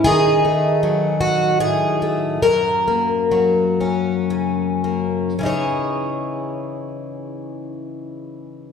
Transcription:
0.04 D#3 G#4
0.45 A3
0.83 F#3
1.21 F#4
1.60 A2 G#4
2.02 A3
2.42 F#2 A#4
2.88 A#3
3.31 F#3
3.81 C#4
4.30 C#3
4.84 A#3
5.39 C#3 E3
5.43 D#4 G#4 C#5

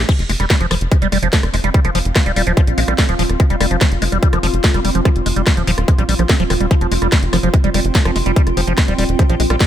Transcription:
0.09 F3 C4, kick, closed hi-hat, crash
0.19 F1, closed hi-hat
0.29 F1 G#3 F5 C6, open hi-hat
0.40 F1 G3, cross-stick, closed hi-hat
0.50 G3, kick, snare, closed hi-hat
0.60 F1 F3, closed hi-hat
0.67 F1 F3 F4, cross-stick, open hi-hat
0.81 F1, closed hi-hat
0.92 G#3, kick, closed hi-hat
1.02 F1 G3, closed hi-hat
1.12 F1 G3, cross-stick, open hi-hat
1.23 F1 F3, closed hi-hat
1.33 F3, kick, snare, closed hi-hat
1.43 F1, cross-stick, closed hi-hat
1.54 F1 G#3, open hi-hat
1.64 F1 G3, closed hi-hat
1.74 G3, kick, closed hi-hat
1.85 F1 F3, cross-stick, closed hi-hat
1.95 F1 F3, open hi-hat
2.05 F1, closed hi-hat
2.16 G#3, kick, cross-stick, snare, closed hi-hat
2.26 D#1 G3, closed hi-hat
2.36 D#1 G3, open hi-hat
2.47 D#1 F3, closed hi-hat
2.57 F3, kick, cross-stick, closed hi-hat
2.67 A#1, closed hi-hat
2.78 A#1 G#3, open hi-hat
2.88 A#1 G3, cross-stick, closed hi-hat
2.98 G3, kick, snare, open hi-hat
3.09 D#1 F3, closed hi-hat
3.19 D#1 F3, open hi-hat
3.29 D#1, cross-stick, closed hi-hat
3.40 G#3, kick, closed hi-hat
3.50 F1 G3, closed hi-hat
3.60 F1 G3, cross-stick, open hi-hat
3.71 F1 F3, closed hi-hat
3.81 F3, kick, snare, closed hi-hat
3.92 F1, closed hi-hat
4.02 F1 G#3, cross-stick, open hi-hat
4.12 F1 G3, closed hi-hat
4.23 G3, kick, closed hi-hat
4.33 F1 F3, cross-stick, closed hi-hat
4.43 F1 F3, open hi-hat
4.54 F1, closed hi-hat
4.64 G#3, kick, snare, closed hi-hat
4.74 F1 G3, cross-stick, closed hi-hat
4.85 F1 G3, open hi-hat
4.95 F1 F3, closed hi-hat
5.05 F3, kick, cross-stick, closed hi-hat
5.16 F1, closed hi-hat
5.26 F1 G#3, open hi-hat
5.36 F1 G3, closed hi-hat
5.47 G3, kick, cross-stick, snare, closed hi-hat
5.57 D#1 F3, closed hi-hat
5.67 D#1 F3, open hi-hat
5.78 D#1, cross-stick, closed hi-hat
5.88 G#3, kick, closed hi-hat
5.98 A#1 G3, closed hi-hat
6.09 A#1 G3, open hi-hat
6.19 A#1 F3, cross-stick, closed hi-hat
6.29 C4, kick, snare, open hi-hat
6.40 D#1 F3, closed hi-hat
6.50 D#1 D#3, cross-stick, open hi-hat
6.61 D#1 G3, closed hi-hat
6.65 G5
6.71 F3, kick, closed hi-hat
6.81 F1 F3, closed hi-hat
6.92 F1 G#3, open hi-hat
7.02 F1 G3, cross-stick, closed hi-hat
7.12 G3, kick, snare, closed hi-hat
7.23 F1, closed hi-hat
7.33 F1 F3, cross-stick, open hi-hat
7.43 F1 F3, closed hi-hat
7.54 G#3, kick, closed hi-hat
7.64 F1 G3, closed hi-hat
7.74 F1 G3, cross-stick, open hi-hat
7.85 F1, closed hi-hat
7.95 F3, kick, snare, closed hi-hat
8.05 F1 F3, cross-stick, closed hi-hat
8.16 F1 G#3, open hi-hat
8.26 F1 G3, closed hi-hat
8.36 G3, kick, closed hi-hat
8.47 F1, cross-stick, closed hi-hat
8.57 F1 F3, open hi-hat
8.67 F1 F3, closed hi-hat
8.78 G#3, kick, cross-stick, snare, closed hi-hat
8.88 D#1 G3, closed hi-hat
8.98 D#1 G3, open hi-hat
9.09 D#1, closed hi-hat
9.19 F3, kick, cross-stick, closed hi-hat
9.29 A#1 F3, closed hi-hat
9.40 A#1 G#3, open hi-hat
9.50 A#1 G3, cross-stick, closed hi-hat
9.61 G3, kick, snare, open hi-hat

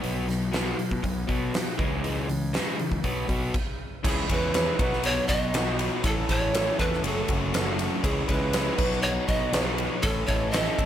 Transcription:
0.01 B1 B2 F#3 B3, open hi-hat
0.27 B2 F#3, snare, open hi-hat
0.52 B2 F#3 B3, snare, open hi-hat
0.77 B2 F#3, open hi-hat
0.91 B2, kick
1.02 B1 B2 F#3, kick, open hi-hat
1.27 B2 F#3 B3, kick, open hi-hat
1.53 B2 F#3, snare, open hi-hat
1.77 C#2 C#3 E3 G#3, kick, open hi-hat
2.03 C#3 E3 G#3, open hi-hat
2.29 C#3 E3, open hi-hat
2.53 C#3 E3 G#3, snare, open hi-hat
2.79 C#3 E3, open hi-hat
2.91 C#2, kick
3.04 B1 B2 F#3 B3, kick, open hi-hat
3.28 B1 B2 F#3 B3, kick, open hi-hat
3.54 kick, crash
4.03 C#2 C#3 E3 G#3 C#4 E4 G#4 C#5, kick, crash
4.08 G#4
4.29 E2 G#3 C#4 E4 G#4 B4 C#5, kick, ride
4.53 E3 G#3 C#4 E4 G#4 C#5, snare, ride
4.79 B1 B2 F#3 B3 D#4 F#4 B4, kick, ride
4.93 snare
5.04 C#5, ride
5.28 B1 B3 D#4 F#4 D#5, kick, ride
5.53 B2 F#3 B3 D#4 F#4 B4, snare, ride
5.79 snare, ride
6.04 A1 A2 E3 A3 C#4 E4 A4, kick, ride
6.27 A1 A3 C#4 E4 G#4 A4 C#5, kick, ride
6.53 E3 A3 C#4 E4 A4, snare, ride
6.79 E2 A3 C#4 A4 B4, kick, ride
6.93 snare
7.02 F#1 F#2 C#3 F#3 A3 C#4 F#4 A4, ride
7.28 F#1 F#3 A3 C#4 F#4, kick, ride
7.53 F#2 C#3 F#3 A3 C#4 F#4 A4, snare, ride
7.79 snare, ride
8.03 C#2 C#3 E3 G#3 C#4 E4 G#4, kick, ride
8.27 C#2 G#3 C#4 E4 G#4 B4, kick, ride
8.53 E3 G#3 C#4 E4 G#4, snare, ride
8.77 B1 B2 F#3 B3 D#4 F#4 B4, kick, crash
8.92 snare
9.02 C#5
9.27 B1 B3 D#4 F#4 D#5, kick, ride
9.53 B2 F#3 B3 D#4 F#4 G#4, snare, ride
9.78 ride
10.02 A1 A2 E3 A3 C#4 E4 A4 C#5, kick, ride
10.26 A1 A3 C#4 E4 A4 C#5 D#5, kick, ride
10.51 E3 A3 C#4 E4 A4 C#5 D#5, snare, ride
10.78 G#1 A3 C#4 A4, kick, ride

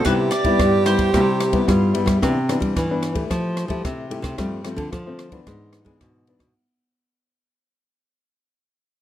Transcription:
0.05 C3 G3 B3 E4 G4 B4, kick, cross-stick, ride
0.31 D5, cross-stick, ride
0.44 G3 B3 E4, kick, ride
0.59 G2 G3, kick, cross-stick, ride
0.86 G3 B3 E4 C5, cross-stick, ride
0.99 kick, ride
1.14 C3 G3 E4, kick, cross-stick, ride
1.40 cross-stick, ride
1.52 G3 B3 E4, kick, ride
1.68 G2 G3 F4, kick, cross-stick, ride
1.94 G3 B3 E4, ride
2.06 G3, kick, cross-stick, ride
2.22 C3 E3 B3 D4, kick, cross-stick, ride
2.49 E3 B3 D4, cross-stick, ride
2.60 G3, kick, ride
2.76 G2 E3, kick, cross-stick, ride
2.90 E3 B3 D4
3.03 cross-stick, ride
3.15 A3 E4 G4, kick, ride
3.30 F3, kick, cross-stick, ride
3.57 cross-stick, ride
3.68 F3 A3 E4 G4, kick, ride
3.85 C3, kick, cross-stick, ride
4.10 A3 E4 G4, ride
4.22 C3, kick, cross-stick, ride
4.38 G2 F3 G3 A3 C4, kick, cross-stick, ride
4.64 F3 A3 C4, cross-stick, ride
4.76 D3, kick, ride
4.92 D3 F3, kick, cross-stick, ride
5.06 F3 A3 C4
5.19 cross-stick, ride
5.32 E3 B3 D4, kick, ride
5.47 G#2 G#3, kick, cross-stick, ride
5.73 cross-stick, ride
5.85 E3 G#3 B3 D4, kick, ride
6.01 G#2 B2, kick, cross-stick, ride
6.27 E3 B3 D4, ride
6.39 B2, kick, cross-stick, ride

